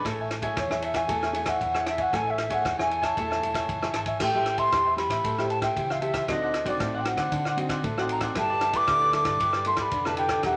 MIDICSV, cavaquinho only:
0, 0, Header, 1, 3, 480
1, 0, Start_track
1, 0, Key_signature, 3, "major"
1, 0, Tempo, 519481
1, 48, Time_signature, 4, 2, 24, 8
1, 3890, Key_signature, 0, "minor"
1, 9763, End_track
2, 0, Start_track
2, 0, Title_t, "Cavaquinho"
2, 0, Program_c, 0, 24
2, 57, Note_on_c, 0, 69, 68
2, 64, Note_on_c, 0, 73, 70
2, 72, Note_on_c, 0, 76, 73
2, 76, Note_on_c, 0, 80, 71
2, 163, Note_off_c, 0, 69, 0
2, 167, Note_off_c, 0, 73, 0
2, 170, Note_off_c, 0, 76, 0
2, 173, Note_off_c, 0, 80, 0
2, 187, Note_on_c, 0, 80, 47
2, 195, Note_on_c, 0, 76, 42
2, 202, Note_on_c, 0, 73, 35
2, 282, Note_off_c, 0, 73, 0
2, 285, Note_off_c, 0, 80, 0
2, 286, Note_off_c, 0, 76, 0
2, 396, Note_on_c, 0, 80, 68
2, 406, Note_on_c, 0, 76, 63
2, 414, Note_on_c, 0, 73, 49
2, 633, Note_off_c, 0, 80, 0
2, 638, Note_off_c, 0, 76, 0
2, 642, Note_off_c, 0, 73, 0
2, 655, Note_on_c, 0, 80, 46
2, 661, Note_on_c, 0, 76, 44
2, 672, Note_on_c, 0, 73, 32
2, 761, Note_off_c, 0, 73, 0
2, 762, Note_off_c, 0, 80, 0
2, 762, Note_on_c, 0, 69, 42
2, 766, Note_off_c, 0, 76, 0
2, 773, Note_on_c, 0, 73, 42
2, 779, Note_on_c, 0, 76, 47
2, 781, Note_on_c, 0, 80, 52
2, 855, Note_off_c, 0, 80, 0
2, 866, Note_on_c, 0, 80, 56
2, 867, Note_off_c, 0, 76, 0
2, 876, Note_off_c, 0, 69, 0
2, 877, Note_off_c, 0, 73, 0
2, 879, Note_on_c, 0, 76, 54
2, 888, Note_on_c, 0, 73, 47
2, 988, Note_off_c, 0, 80, 0
2, 994, Note_off_c, 0, 76, 0
2, 999, Note_off_c, 0, 73, 0
2, 1009, Note_on_c, 0, 69, 64
2, 1014, Note_on_c, 0, 73, 73
2, 1024, Note_on_c, 0, 76, 71
2, 1026, Note_on_c, 0, 80, 83
2, 1120, Note_off_c, 0, 69, 0
2, 1122, Note_off_c, 0, 73, 0
2, 1127, Note_off_c, 0, 76, 0
2, 1128, Note_off_c, 0, 80, 0
2, 1139, Note_on_c, 0, 80, 46
2, 1144, Note_on_c, 0, 76, 42
2, 1154, Note_on_c, 0, 73, 39
2, 1245, Note_off_c, 0, 80, 0
2, 1246, Note_off_c, 0, 73, 0
2, 1247, Note_off_c, 0, 76, 0
2, 1359, Note_on_c, 0, 80, 57
2, 1368, Note_on_c, 0, 76, 57
2, 1376, Note_on_c, 0, 73, 50
2, 1595, Note_off_c, 0, 80, 0
2, 1599, Note_off_c, 0, 76, 0
2, 1603, Note_off_c, 0, 73, 0
2, 1617, Note_on_c, 0, 80, 46
2, 1627, Note_on_c, 0, 76, 47
2, 1634, Note_on_c, 0, 73, 37
2, 1719, Note_off_c, 0, 73, 0
2, 1722, Note_on_c, 0, 69, 44
2, 1724, Note_off_c, 0, 80, 0
2, 1729, Note_off_c, 0, 76, 0
2, 1730, Note_on_c, 0, 73, 41
2, 1740, Note_on_c, 0, 76, 43
2, 1743, Note_on_c, 0, 80, 47
2, 1817, Note_off_c, 0, 80, 0
2, 1826, Note_off_c, 0, 76, 0
2, 1828, Note_on_c, 0, 80, 65
2, 1833, Note_off_c, 0, 73, 0
2, 1836, Note_off_c, 0, 69, 0
2, 1837, Note_on_c, 0, 76, 53
2, 1844, Note_on_c, 0, 73, 51
2, 1949, Note_off_c, 0, 80, 0
2, 1954, Note_off_c, 0, 76, 0
2, 1957, Note_off_c, 0, 73, 0
2, 1967, Note_on_c, 0, 69, 69
2, 1977, Note_on_c, 0, 73, 66
2, 1982, Note_on_c, 0, 76, 73
2, 1983, Note_on_c, 0, 80, 75
2, 2079, Note_off_c, 0, 69, 0
2, 2081, Note_off_c, 0, 80, 0
2, 2084, Note_off_c, 0, 73, 0
2, 2086, Note_off_c, 0, 76, 0
2, 2092, Note_on_c, 0, 80, 46
2, 2098, Note_on_c, 0, 76, 41
2, 2108, Note_on_c, 0, 73, 35
2, 2197, Note_off_c, 0, 73, 0
2, 2199, Note_off_c, 0, 76, 0
2, 2201, Note_off_c, 0, 80, 0
2, 2309, Note_on_c, 0, 80, 68
2, 2320, Note_on_c, 0, 76, 60
2, 2328, Note_on_c, 0, 73, 51
2, 2550, Note_off_c, 0, 80, 0
2, 2555, Note_off_c, 0, 76, 0
2, 2559, Note_off_c, 0, 73, 0
2, 2570, Note_on_c, 0, 80, 50
2, 2577, Note_on_c, 0, 76, 47
2, 2586, Note_on_c, 0, 73, 37
2, 2673, Note_off_c, 0, 73, 0
2, 2680, Note_off_c, 0, 80, 0
2, 2681, Note_off_c, 0, 76, 0
2, 2681, Note_on_c, 0, 69, 39
2, 2684, Note_on_c, 0, 73, 42
2, 2692, Note_on_c, 0, 76, 47
2, 2696, Note_on_c, 0, 80, 54
2, 2775, Note_off_c, 0, 80, 0
2, 2786, Note_on_c, 0, 80, 66
2, 2787, Note_off_c, 0, 76, 0
2, 2795, Note_off_c, 0, 73, 0
2, 2796, Note_off_c, 0, 69, 0
2, 2798, Note_on_c, 0, 76, 50
2, 2806, Note_on_c, 0, 73, 52
2, 2908, Note_off_c, 0, 80, 0
2, 2914, Note_off_c, 0, 76, 0
2, 2918, Note_off_c, 0, 73, 0
2, 2930, Note_on_c, 0, 69, 65
2, 2933, Note_on_c, 0, 73, 72
2, 2936, Note_on_c, 0, 76, 75
2, 2943, Note_on_c, 0, 80, 80
2, 3037, Note_off_c, 0, 80, 0
2, 3040, Note_off_c, 0, 69, 0
2, 3042, Note_off_c, 0, 73, 0
2, 3044, Note_off_c, 0, 76, 0
2, 3048, Note_on_c, 0, 80, 44
2, 3055, Note_on_c, 0, 76, 42
2, 3065, Note_on_c, 0, 73, 34
2, 3158, Note_off_c, 0, 73, 0
2, 3159, Note_off_c, 0, 76, 0
2, 3159, Note_off_c, 0, 80, 0
2, 3268, Note_on_c, 0, 80, 59
2, 3278, Note_on_c, 0, 76, 54
2, 3284, Note_on_c, 0, 73, 47
2, 3510, Note_off_c, 0, 80, 0
2, 3514, Note_off_c, 0, 76, 0
2, 3518, Note_off_c, 0, 73, 0
2, 3530, Note_on_c, 0, 80, 51
2, 3539, Note_on_c, 0, 76, 41
2, 3549, Note_on_c, 0, 73, 38
2, 3640, Note_off_c, 0, 73, 0
2, 3641, Note_off_c, 0, 76, 0
2, 3641, Note_off_c, 0, 80, 0
2, 3643, Note_on_c, 0, 69, 39
2, 3651, Note_on_c, 0, 73, 44
2, 3652, Note_on_c, 0, 76, 47
2, 3660, Note_on_c, 0, 80, 52
2, 3743, Note_off_c, 0, 80, 0
2, 3754, Note_off_c, 0, 76, 0
2, 3754, Note_on_c, 0, 80, 57
2, 3757, Note_off_c, 0, 69, 0
2, 3759, Note_off_c, 0, 73, 0
2, 3765, Note_on_c, 0, 76, 59
2, 3770, Note_on_c, 0, 73, 49
2, 3872, Note_off_c, 0, 80, 0
2, 3878, Note_off_c, 0, 76, 0
2, 3881, Note_off_c, 0, 73, 0
2, 3887, Note_on_c, 0, 69, 46
2, 3894, Note_on_c, 0, 72, 46
2, 3899, Note_on_c, 0, 76, 53
2, 3902, Note_on_c, 0, 79, 50
2, 3999, Note_off_c, 0, 69, 0
2, 4001, Note_off_c, 0, 79, 0
2, 4003, Note_off_c, 0, 72, 0
2, 4005, Note_off_c, 0, 76, 0
2, 4012, Note_on_c, 0, 79, 59
2, 4022, Note_on_c, 0, 76, 60
2, 4030, Note_on_c, 0, 72, 53
2, 4216, Note_off_c, 0, 79, 0
2, 4225, Note_off_c, 0, 76, 0
2, 4227, Note_on_c, 0, 79, 63
2, 4235, Note_off_c, 0, 72, 0
2, 4236, Note_on_c, 0, 76, 57
2, 4246, Note_on_c, 0, 72, 56
2, 4349, Note_off_c, 0, 79, 0
2, 4354, Note_off_c, 0, 76, 0
2, 4359, Note_off_c, 0, 72, 0
2, 4367, Note_on_c, 0, 69, 50
2, 4375, Note_on_c, 0, 72, 51
2, 4378, Note_on_c, 0, 76, 49
2, 4383, Note_on_c, 0, 79, 54
2, 4475, Note_off_c, 0, 79, 0
2, 4479, Note_off_c, 0, 69, 0
2, 4483, Note_off_c, 0, 72, 0
2, 4485, Note_off_c, 0, 76, 0
2, 4486, Note_on_c, 0, 79, 53
2, 4496, Note_on_c, 0, 76, 54
2, 4501, Note_on_c, 0, 72, 48
2, 4588, Note_off_c, 0, 72, 0
2, 4594, Note_off_c, 0, 76, 0
2, 4595, Note_off_c, 0, 79, 0
2, 4708, Note_on_c, 0, 79, 59
2, 4722, Note_on_c, 0, 76, 59
2, 4728, Note_on_c, 0, 72, 49
2, 4830, Note_off_c, 0, 79, 0
2, 4837, Note_off_c, 0, 76, 0
2, 4840, Note_off_c, 0, 72, 0
2, 4849, Note_on_c, 0, 69, 50
2, 4856, Note_on_c, 0, 72, 50
2, 4859, Note_on_c, 0, 76, 55
2, 4866, Note_on_c, 0, 79, 59
2, 4960, Note_off_c, 0, 69, 0
2, 4961, Note_off_c, 0, 79, 0
2, 4964, Note_off_c, 0, 72, 0
2, 4966, Note_off_c, 0, 76, 0
2, 4972, Note_on_c, 0, 79, 67
2, 4985, Note_on_c, 0, 76, 58
2, 4993, Note_on_c, 0, 72, 50
2, 5075, Note_off_c, 0, 76, 0
2, 5077, Note_off_c, 0, 72, 0
2, 5080, Note_off_c, 0, 79, 0
2, 5189, Note_on_c, 0, 79, 59
2, 5199, Note_on_c, 0, 76, 55
2, 5208, Note_on_c, 0, 72, 49
2, 5431, Note_off_c, 0, 79, 0
2, 5436, Note_off_c, 0, 76, 0
2, 5440, Note_off_c, 0, 72, 0
2, 5453, Note_on_c, 0, 79, 56
2, 5464, Note_on_c, 0, 76, 64
2, 5468, Note_on_c, 0, 72, 52
2, 5547, Note_off_c, 0, 72, 0
2, 5553, Note_off_c, 0, 76, 0
2, 5554, Note_on_c, 0, 69, 47
2, 5558, Note_on_c, 0, 72, 46
2, 5562, Note_off_c, 0, 79, 0
2, 5564, Note_on_c, 0, 76, 48
2, 5573, Note_on_c, 0, 79, 50
2, 5657, Note_off_c, 0, 79, 0
2, 5669, Note_on_c, 0, 79, 63
2, 5670, Note_off_c, 0, 76, 0
2, 5673, Note_off_c, 0, 69, 0
2, 5675, Note_off_c, 0, 72, 0
2, 5681, Note_on_c, 0, 76, 57
2, 5691, Note_on_c, 0, 72, 50
2, 5790, Note_off_c, 0, 79, 0
2, 5796, Note_off_c, 0, 76, 0
2, 5801, Note_off_c, 0, 72, 0
2, 5808, Note_on_c, 0, 62, 51
2, 5818, Note_on_c, 0, 72, 49
2, 5822, Note_on_c, 0, 74, 58
2, 5827, Note_on_c, 0, 78, 55
2, 5920, Note_off_c, 0, 62, 0
2, 5924, Note_off_c, 0, 78, 0
2, 5925, Note_off_c, 0, 72, 0
2, 5927, Note_off_c, 0, 74, 0
2, 5935, Note_on_c, 0, 78, 60
2, 5945, Note_on_c, 0, 74, 55
2, 5952, Note_on_c, 0, 72, 52
2, 6142, Note_off_c, 0, 78, 0
2, 6151, Note_off_c, 0, 74, 0
2, 6153, Note_on_c, 0, 78, 58
2, 6160, Note_off_c, 0, 72, 0
2, 6162, Note_on_c, 0, 74, 52
2, 6171, Note_on_c, 0, 72, 55
2, 6273, Note_off_c, 0, 78, 0
2, 6277, Note_off_c, 0, 72, 0
2, 6277, Note_off_c, 0, 74, 0
2, 6281, Note_on_c, 0, 62, 47
2, 6288, Note_on_c, 0, 72, 52
2, 6292, Note_on_c, 0, 74, 46
2, 6300, Note_on_c, 0, 78, 54
2, 6397, Note_off_c, 0, 62, 0
2, 6400, Note_off_c, 0, 72, 0
2, 6402, Note_off_c, 0, 74, 0
2, 6406, Note_off_c, 0, 78, 0
2, 6416, Note_on_c, 0, 78, 67
2, 6426, Note_on_c, 0, 74, 50
2, 6436, Note_on_c, 0, 72, 48
2, 6523, Note_off_c, 0, 72, 0
2, 6524, Note_off_c, 0, 78, 0
2, 6526, Note_off_c, 0, 74, 0
2, 6632, Note_on_c, 0, 78, 58
2, 6648, Note_on_c, 0, 74, 64
2, 6654, Note_on_c, 0, 72, 53
2, 6752, Note_off_c, 0, 78, 0
2, 6760, Note_off_c, 0, 74, 0
2, 6763, Note_off_c, 0, 72, 0
2, 6771, Note_on_c, 0, 62, 47
2, 6781, Note_on_c, 0, 72, 47
2, 6781, Note_on_c, 0, 74, 53
2, 6788, Note_on_c, 0, 78, 52
2, 6882, Note_off_c, 0, 62, 0
2, 6882, Note_off_c, 0, 78, 0
2, 6886, Note_off_c, 0, 74, 0
2, 6887, Note_off_c, 0, 72, 0
2, 6893, Note_on_c, 0, 78, 59
2, 6904, Note_on_c, 0, 74, 60
2, 6910, Note_on_c, 0, 72, 47
2, 6990, Note_off_c, 0, 72, 0
2, 6994, Note_off_c, 0, 74, 0
2, 6997, Note_off_c, 0, 78, 0
2, 7105, Note_on_c, 0, 78, 61
2, 7114, Note_on_c, 0, 74, 55
2, 7124, Note_on_c, 0, 72, 47
2, 7349, Note_off_c, 0, 78, 0
2, 7353, Note_off_c, 0, 74, 0
2, 7358, Note_off_c, 0, 72, 0
2, 7374, Note_on_c, 0, 78, 71
2, 7387, Note_on_c, 0, 74, 64
2, 7394, Note_on_c, 0, 72, 49
2, 7479, Note_on_c, 0, 62, 47
2, 7480, Note_off_c, 0, 72, 0
2, 7481, Note_off_c, 0, 74, 0
2, 7483, Note_off_c, 0, 78, 0
2, 7491, Note_on_c, 0, 72, 46
2, 7492, Note_on_c, 0, 74, 46
2, 7499, Note_on_c, 0, 78, 49
2, 7574, Note_off_c, 0, 78, 0
2, 7585, Note_on_c, 0, 78, 72
2, 7587, Note_off_c, 0, 74, 0
2, 7593, Note_off_c, 0, 72, 0
2, 7596, Note_off_c, 0, 62, 0
2, 7598, Note_on_c, 0, 74, 58
2, 7605, Note_on_c, 0, 72, 55
2, 7709, Note_off_c, 0, 78, 0
2, 7715, Note_off_c, 0, 74, 0
2, 7716, Note_on_c, 0, 64, 46
2, 7719, Note_off_c, 0, 72, 0
2, 7727, Note_on_c, 0, 67, 51
2, 7731, Note_on_c, 0, 71, 54
2, 7739, Note_on_c, 0, 74, 51
2, 7834, Note_off_c, 0, 64, 0
2, 7840, Note_off_c, 0, 67, 0
2, 7840, Note_off_c, 0, 74, 0
2, 7842, Note_off_c, 0, 71, 0
2, 7851, Note_on_c, 0, 74, 63
2, 7858, Note_on_c, 0, 71, 53
2, 7868, Note_on_c, 0, 67, 50
2, 8051, Note_off_c, 0, 74, 0
2, 8062, Note_on_c, 0, 74, 67
2, 8064, Note_off_c, 0, 71, 0
2, 8072, Note_off_c, 0, 67, 0
2, 8075, Note_on_c, 0, 71, 67
2, 8083, Note_on_c, 0, 67, 51
2, 8187, Note_off_c, 0, 74, 0
2, 8194, Note_off_c, 0, 71, 0
2, 8198, Note_off_c, 0, 67, 0
2, 8203, Note_on_c, 0, 64, 47
2, 8209, Note_on_c, 0, 67, 56
2, 8214, Note_on_c, 0, 71, 51
2, 8218, Note_on_c, 0, 74, 60
2, 8314, Note_off_c, 0, 74, 0
2, 8318, Note_off_c, 0, 64, 0
2, 8321, Note_off_c, 0, 67, 0
2, 8323, Note_off_c, 0, 71, 0
2, 8325, Note_on_c, 0, 74, 70
2, 8336, Note_on_c, 0, 71, 64
2, 8345, Note_on_c, 0, 67, 50
2, 8434, Note_off_c, 0, 67, 0
2, 8437, Note_off_c, 0, 71, 0
2, 8439, Note_off_c, 0, 74, 0
2, 8555, Note_on_c, 0, 74, 67
2, 8561, Note_on_c, 0, 71, 55
2, 8573, Note_on_c, 0, 67, 58
2, 8674, Note_off_c, 0, 74, 0
2, 8677, Note_off_c, 0, 71, 0
2, 8683, Note_off_c, 0, 67, 0
2, 8686, Note_on_c, 0, 64, 53
2, 8695, Note_on_c, 0, 67, 47
2, 8699, Note_on_c, 0, 71, 54
2, 8704, Note_on_c, 0, 74, 58
2, 8799, Note_off_c, 0, 64, 0
2, 8804, Note_off_c, 0, 67, 0
2, 8804, Note_off_c, 0, 74, 0
2, 8806, Note_off_c, 0, 71, 0
2, 8815, Note_on_c, 0, 74, 67
2, 8826, Note_on_c, 0, 71, 50
2, 8833, Note_on_c, 0, 67, 47
2, 8916, Note_off_c, 0, 67, 0
2, 8919, Note_off_c, 0, 71, 0
2, 8922, Note_off_c, 0, 74, 0
2, 9038, Note_on_c, 0, 74, 54
2, 9047, Note_on_c, 0, 71, 56
2, 9056, Note_on_c, 0, 67, 49
2, 9275, Note_off_c, 0, 74, 0
2, 9280, Note_off_c, 0, 71, 0
2, 9284, Note_off_c, 0, 67, 0
2, 9295, Note_on_c, 0, 74, 55
2, 9303, Note_on_c, 0, 71, 67
2, 9311, Note_on_c, 0, 67, 52
2, 9393, Note_off_c, 0, 67, 0
2, 9398, Note_on_c, 0, 64, 46
2, 9401, Note_off_c, 0, 71, 0
2, 9404, Note_off_c, 0, 74, 0
2, 9404, Note_on_c, 0, 67, 50
2, 9412, Note_on_c, 0, 71, 52
2, 9418, Note_on_c, 0, 74, 52
2, 9507, Note_off_c, 0, 74, 0
2, 9515, Note_off_c, 0, 64, 0
2, 9517, Note_off_c, 0, 71, 0
2, 9518, Note_on_c, 0, 74, 61
2, 9519, Note_off_c, 0, 67, 0
2, 9529, Note_on_c, 0, 71, 61
2, 9534, Note_on_c, 0, 67, 52
2, 9635, Note_off_c, 0, 74, 0
2, 9637, Note_off_c, 0, 67, 0
2, 9641, Note_off_c, 0, 71, 0
2, 9648, Note_on_c, 0, 67, 48
2, 9656, Note_on_c, 0, 70, 50
2, 9663, Note_on_c, 0, 76, 57
2, 9667, Note_on_c, 0, 74, 52
2, 9761, Note_off_c, 0, 67, 0
2, 9763, Note_off_c, 0, 70, 0
2, 9763, Note_off_c, 0, 74, 0
2, 9763, Note_off_c, 0, 76, 0
2, 9763, End_track
3, 0, Start_track
3, 0, Title_t, "Muted cavaquinho strokes"
3, 289, Note_on_c, 9, 29, 38
3, 381, Note_off_c, 9, 29, 0
3, 1255, Note_on_c, 9, 29, 32
3, 1347, Note_off_c, 9, 29, 0
3, 2203, Note_on_c, 9, 29, 37
3, 2296, Note_off_c, 9, 29, 0
3, 3164, Note_on_c, 9, 29, 33
3, 3257, Note_off_c, 9, 29, 0
3, 5085, Note_on_c, 9, 29, 35
3, 5177, Note_off_c, 9, 29, 0
3, 6533, Note_on_c, 9, 29, 33
3, 6625, Note_off_c, 9, 29, 0
3, 6996, Note_on_c, 9, 29, 30
3, 7089, Note_off_c, 9, 29, 0
3, 8440, Note_on_c, 9, 29, 35
3, 8532, Note_off_c, 9, 29, 0
3, 8925, Note_on_c, 9, 29, 35
3, 9017, Note_off_c, 9, 29, 0
3, 9763, End_track
0, 0, End_of_file